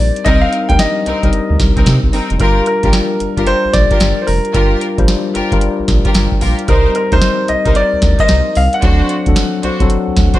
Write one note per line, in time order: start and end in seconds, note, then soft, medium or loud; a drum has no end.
0.00 0.11 A#1 medium
0.00 0.26 G3 medium
0.00 0.27 C4 medium
0.00 0.70 D4 medium
0.00 0.27 D#4 medium
0.00 2.42 G4 medium
0.00 0.27 A#4 medium
0.00 0.27 D5 medium
0.16 closed hi-hat medium
0.25 0.45 C2 loud
0.25 0.63 G3 medium
0.25 0.51 C4 medium
0.25 0.63 C4 medium
0.25 0.51 D#4 medium
0.25 0.63 D#4 medium
0.25 0.51 A#4 loud
0.25 0.63 A#4 medium
0.25 0.43 D#5 loud
0.25 kick loud
0.25 closed hi-hat medium
0.41 0.70 F5 loud
0.53 closed hi-hat medium
0.69 0.77 D2 loud
0.69 1.14 G3 medium
0.69 1.14 C4 medium
0.69 0.75 D4 medium
0.69 1.15 A#4 medium
0.69 0.79 G5 loud
0.69 kick loud
0.69 closed hi-hat medium
0.77 1.18 D#4 medium
0.77 1.56 D#5 medium
0.77 snare loud
0.77 closed hi-hat medium
1.06 1.13 C2 soft
1.06 1.24 C4 medium
1.06 1.24 D#4 medium
1.06 1.24 A#4 medium
1.06 closed hi-hat medium
1.23 1.30 C2 medium
1.23 2.12 G3 medium
1.23 2.13 C4 medium
1.23 2.13 D#4 medium
1.23 2.13 A#4 medium
1.23 kick medium
1.23 closed hi-hat medium
1.33 closed hi-hat medium
1.50 1.57 D2 medium
1.60 1.72 C2 medium
1.60 kick medium
1.60 snare medium
1.60 closed hi-hat medium
1.77 1.84 C2 medium
1.77 1.87 C4 medium
1.77 1.88 D#4 medium
1.77 1.88 A#4 medium
1.77 kick medium
1.77 closed hi-hat soft
1.86 1.99 C3 loud
1.86 snare loud
1.86 closed hi-hat medium
2.03 2.10 C2 medium
2.03 kick medium
2.13 2.31 C4 medium
2.13 2.31 D#4 medium
2.13 2.31 A#4 medium
2.13 open hi-hat medium
2.30 2.37 F1 loud
2.30 closed hi-hat medium
2.40 2.59 G1 loud
2.40 2.77 G3 medium
2.40 2.77 D4 medium
2.40 2.58 F4 medium
2.40 2.77 F4 medium
2.40 2.58 G4 medium
2.40 2.58 A#4 loud
2.40 2.66 A#4 medium
2.40 2.77 A#4 medium
2.40 kick loud
2.40 closed hi-hat medium
2.66 3.50 A#4 medium
2.66 closed hi-hat medium
2.83 2.91 A#1 medium
2.83 3.28 G3 medium
2.83 3.28 D4 medium
2.83 2.94 F4 medium
2.83 3.28 F4 medium
2.83 2.94 G4 medium
2.83 2.95 A#4 medium
2.83 3.29 A#4 medium
2.83 kick loud
2.83 closed hi-hat medium
2.93 snare loud
2.93 closed hi-hat medium
3.20 3.27 G1 soft
3.20 closed hi-hat medium
3.37 3.44 G1 medium
3.37 4.27 G3 medium
3.37 4.27 D4 medium
3.37 3.48 F4 medium
3.37 4.27 F4 medium
3.37 3.48 G4 medium
3.37 4.27 G4 medium
3.37 3.48 A#4 medium
3.37 kick medium
3.37 closed hi-hat medium
3.47 3.75 C5 loud
3.47 closed hi-hat medium
3.65 3.69 A#1 soft
3.73 3.86 A#1 loud
3.73 4.24 D5 loud
3.73 kick loud
3.73 snare medium
3.73 closed hi-hat medium
3.91 4.02 F4 medium
3.91 4.02 G4 medium
3.91 4.02 A#4 medium
3.91 kick medium
3.91 closed hi-hat soft
4.00 4.13 G1 loud
4.00 snare loud
4.00 closed hi-hat medium
4.22 4.27 C5 medium
4.27 4.40 F1 medium
4.27 5.04 A#4 medium
4.27 open hi-hat medium
4.45 closed hi-hat medium
4.54 4.73 G1 loud
4.54 4.91 G3 medium
4.54 4.91 D4 medium
4.54 4.79 F4 medium
4.54 4.92 F4 medium
4.54 4.80 G4 medium
4.54 4.80 A#4 loud
4.54 4.92 A#4 medium
4.54 kick loud
4.54 closed hi-hat medium
4.81 closed hi-hat medium
4.98 5.05 A#1 medium
4.98 5.42 G3 medium
4.98 5.43 D4 medium
4.98 5.43 F4 medium
4.98 5.43 C5 loud
4.98 kick loud
4.98 closed hi-hat medium
5.08 snare loud
5.08 closed hi-hat medium
5.34 5.42 G1 soft
5.34 5.52 F4 medium
5.34 5.52 G4 medium
5.34 5.53 A#4 medium
5.34 closed hi-hat medium
5.52 5.59 G1 medium
5.52 6.41 G3 medium
5.52 6.41 D4 medium
5.52 6.41 F4 medium
5.52 6.41 A#4 loud
5.52 kick medium
5.52 closed hi-hat medium
5.61 closed hi-hat medium
5.79 5.83 A#1 soft
5.88 6.01 A#1 loud
5.88 kick loud
5.88 snare medium
5.88 closed hi-hat medium
6.05 6.16 F4 medium
6.05 6.16 G4 medium
6.05 6.16 A#4 medium
6.05 kick medium
6.05 closed hi-hat medium
6.15 6.27 G1 medium
6.15 6.40 G5 medium
6.15 snare loud
6.15 closed hi-hat medium
6.32 kick medium
6.41 6.54 A#1 medium
6.41 6.59 F4 medium
6.41 6.59 G4 medium
6.41 6.60 A#4 medium
6.41 6.67 F5 medium
6.41 open hi-hat medium
6.59 closed hi-hat medium
6.68 6.87 C2 loud
6.68 7.05 G3 medium
6.68 7.06 C4 medium
6.68 6.86 D#4 medium
6.68 7.06 D#4 medium
6.68 6.86 A#4 medium
6.68 6.94 A#4 medium
6.68 7.06 A#4 medium
6.68 6.86 C5 loud
6.68 kick loud
6.68 closed hi-hat medium
6.95 7.13 A#4 medium
6.95 closed hi-hat medium
7.12 7.19 D2 loud
7.12 7.56 G3 medium
7.12 7.57 C4 medium
7.12 7.23 D#4 medium
7.12 7.57 D#4 medium
7.12 7.23 A#4 medium
7.12 7.57 A#4 medium
7.12 7.23 C5 medium
7.12 7.50 C5 loud
7.12 kick loud
7.12 closed hi-hat medium
7.22 snare loud
7.22 closed hi-hat medium
7.48 7.56 C2 soft
7.48 7.76 D#5 medium
7.48 closed hi-hat medium
7.65 7.73 C2 medium
7.65 8.55 G3 medium
7.65 8.55 C4 medium
7.65 7.76 D#4 medium
7.65 8.55 D#4 medium
7.65 7.77 A#4 medium
7.65 8.56 A#4 medium
7.65 7.77 C5 medium
7.65 kick medium
7.65 closed hi-hat medium
7.75 8.17 D5 loud
7.75 closed hi-hat medium
7.93 7.97 D2 soft
8.02 8.15 D2 medium
8.02 kick loud
8.02 snare medium
8.02 closed hi-hat medium
8.19 8.30 D#4 medium
8.19 8.30 A#4 medium
8.19 8.30 C5 medium
8.19 8.57 D#5 loud
8.19 kick medium
8.19 closed hi-hat soft
8.28 8.42 C2 loud
8.28 snare loud
8.28 closed hi-hat medium
8.55 8.69 C2 loud
8.55 8.74 F5 loud
8.55 open hi-hat medium
8.73 10.39 F#5 medium
8.73 closed hi-hat medium
8.82 9.02 D2 loud
8.82 9.20 F#3 medium
8.82 9.20 C4 medium
8.82 9.08 D4 medium
8.82 9.20 D4 medium
8.82 9.08 F#4 medium
8.82 9.20 A4 medium
8.82 9.08 C5 loud
8.82 kick loud
8.82 closed hi-hat medium
9.09 closed hi-hat medium
9.26 9.34 D2 medium
9.26 9.71 F#3 medium
9.26 9.71 C4 medium
9.26 9.72 D4 medium
9.26 9.72 A4 medium
9.26 kick loud
9.26 closed hi-hat medium
9.36 snare loud
9.36 closed hi-hat medium
9.63 9.70 C2 soft
9.63 9.81 D4 medium
9.63 9.81 F#4 medium
9.63 9.81 C5 medium
9.63 closed hi-hat medium
9.80 9.87 C2 medium
9.80 10.39 F#3 medium
9.80 10.39 C4 medium
9.80 10.39 D4 medium
9.80 10.39 A4 medium
9.80 kick medium
9.80 closed hi-hat medium
9.90 closed hi-hat medium
10.08 10.11 D2 soft
10.17 10.29 D2 medium
10.17 kick loud
10.17 snare medium
10.17 closed hi-hat medium
10.34 10.39 D4 medium
10.34 10.39 F#4 medium
10.34 10.39 C5 medium
10.34 kick medium
10.34 closed hi-hat soft